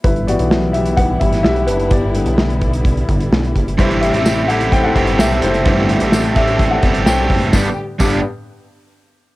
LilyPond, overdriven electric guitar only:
\new Staff \with { instrumentName = "Overdriven electric guitar" } { \time 4/4 \key e \minor \tempo 4 = 128 r1 | r1 | <g, e a c' e' g'>8. <a c' e' g'>8. <a c' e' g'>4 <a c' e' g'>8 <a c' e' g'>4 | <g, e a c' e' g'>8. <a c' e' g'>8. <a c' e' g'>4 <a c' e' g'>8 <a c' e' g'>4 |
<g, d g b d' g'>16 r8. <g, d g b d' g'>8 r2 r8 | }